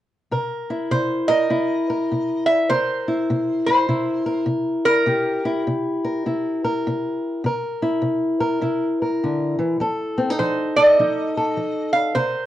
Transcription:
0.31 C3 A#4
0.70 E4
0.91 C3 C5
1.28 A#4 D#5
1.50 C3 E4
1.90 A#4
2.12 C3
2.46 E5
2.70 C3 A#4 C5
3.08 E4
3.30 C3
3.66 A#4 C5
3.89 C3 E4
4.26 A#4
4.46 C3
4.85 A#4
5.06 C3 G4
5.45 E4
5.67 C3
6.05 A#4
6.26 C3 E4
6.64 A#4
6.87 C3
7.44 C3 A#4
7.83 E4
8.02 C3
8.40 A#4
8.61 C3 E4
9.02 A#4
9.23 D3
9.59 E3
9.80 F3 A4
10.18 C4
10.30 D#4
10.39 F3 C5
10.76 A4 D#5
10.99 F3 D#4
11.38 A4
11.57 F3
11.93 F5
12.15 C3 A#4 C5

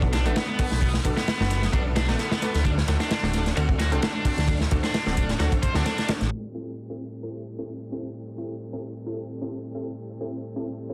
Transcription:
Already playing: B1 D3 A3 B3 D4 F#4 A4
0.02 kick
0.13 D4, snare, closed hi-hat, ride
0.26 A1 A3 B3 D4 F#4 A4, closed hi-hat
0.36 B3, snare, closed hi-hat, ride
0.48 B3
0.59 B3 D4 F#4 A4, kick, closed hi-hat, open hi-hat
0.71 B1, snare, closed hi-hat
0.81 B3, kick, closed hi-hat, ride
0.94 snare
1.04 B1 B3 D4 F#4 A4, kick, closed hi-hat, ride
1.17 B3, snare, closed hi-hat
1.28 snare, closed hi-hat, ride
1.40 F#1 B3 D4 F#4 A4, snare
1.50 snare, closed hi-hat, ride
1.62 snare, closed hi-hat
1.73 B1 B3 D4 F#4 A4, kick, closed hi-hat, ride
1.96 D4, snare, closed hi-hat, ride
2.09 A1 A3 B3 D4 F#4 A4, snare, closed hi-hat
2.19 B3, snare, closed hi-hat, ride
2.31 B3, snare, ride
2.42 B3 D4 F#4 A4, snare, closed hi-hat
2.55 D2, snare, closed hi-hat, ride
2.65 C4 D4 F#4, kick, closed hi-hat, ride
2.78 snare
2.88 D2 C4 D4 F#4 A4, snare, closed hi-hat, ride
3.00 D4, snare, closed hi-hat
3.11 snare, closed hi-hat, ride
3.23 D1 C4 D4 F#4 A4, snare
3.33 snare, closed hi-hat, ride
3.46 snare, closed hi-hat
3.56 D2 C4 D4 F#4 A4, closed hi-hat, ride
3.69 kick
3.79 F#4, snare, closed hi-hat, ride
3.92 C2 C4 D4 F#4 A4, closed hi-hat
4.02 D4, snare, closed hi-hat, ride
4.15 D4
4.25 C4 D4 F#4 A4, kick, closed hi-hat, open hi-hat
4.38 D2, snare, closed hi-hat
4.48 D4, kick, closed hi-hat, ride
4.61 snare
4.71 D2 C4 D4 F#4 A4, kick, closed hi-hat, ride
4.83 D4, snare, closed hi-hat
4.94 snare, closed hi-hat, ride
5.06 D1 C4 D4 F#4 A4, snare
5.17 kick, closed hi-hat, ride
5.29 snare, closed hi-hat
5.39 D2 C4 D4 F#4 A4, snare, closed hi-hat, ride
5.52 kick, closed hi-hat, ride
5.63 C5, kick, closed hi-hat, ride
5.74 D2 C4 D4 F#4 A4, snare, closed hi-hat
5.85 D4, snare, closed hi-hat, ride
5.98 D4, snare, closed hi-hat
6.09 C4 D4 F#4 A4, snare, closed hi-hat, ride
6.21 A1, snare, closed hi-hat
6.31 A2 G3 C4 A4, downlifter
6.54 C4 E4 G4 A4
6.89 C4 E4 G4 A4
7.23 C4 E4 G4 A4
7.58 C4 E4 G4 A4
7.92 C4 E4 G4 A4
8.38 C4 E4 G4 A4
8.73 C4 E4 G4 A4
9.06 C4 E4 G4 A4
9.41 C4 E4 G4 A4
9.75 C4 E4 G4 A4
10.20 C4 E4 G4 A4
10.56 C4 E4 G4 A4
10.89 C4 E4 G4 A4

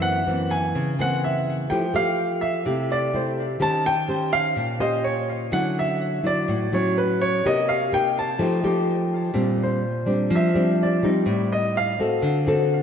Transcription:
Already playing: F#2 E3 A#3 C4
0.02 F#5
0.27 E3 A#3 C4
0.51 G#5
0.75 C#3
0.99 E3 A#3 C4 F#5
1.24 E5
1.70 F3 A3 E4 G4 G5
1.94 A3 G4 F5
2.41 E5
2.66 C3 A3 E4 G4
2.92 D5
3.13 A3 E4 G4 C5
3.60 D#3 C#4 G4 C5 A5
3.86 G5
4.08 C#4 G4 C5
4.33 F5
4.56 A#2
4.79 C#4 G4 C5 D#5
5.04 C#5
5.52 D3 F#3 C#4 E4 F#5
5.79 E5
6.23 F#3 E4 D5
6.48 A2
6.73 F#3 C#4 E4 C#5
6.98 B4
7.21 C#5
7.44 C3 A#3 D#4 G4 D#5
7.69 F5
7.92 A#3 D#4 G4 G5
8.19 A5
8.39 F3 A3 D#4 G4
8.64 A3 D#4 G4
9.34 A#2 G3 C4 D4
9.63 C5
10.06 G3 C4 D4
10.30 F3
10.35 E5
10.54 G3 C4 D4
10.83 D5
11.03 G3 C4 D#4
11.26 A2
11.52 D#5
11.77 F5
11.99 C4 F#4 A4
12.22 D3
12.47 C4 F#4 A4

